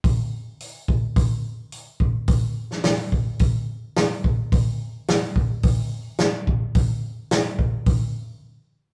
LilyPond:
\new DrumStaff \with { instrumentName = "Drums" } \drummode { \time 4/4 \tempo 4 = 108 <hho bd>4 hho8 bd8 <hho bd>4 hho8 bd8 | <hho bd>8. sn16 <hho sn>8 bd8 <hho bd>4 <hho sn>8 bd8 | <hho bd>4 <hho sn>8 bd8 <hho bd>4 <hho sn>8 bd8 | <hho bd>4 <hho sn>8 bd8 <hho bd>4 r4 | }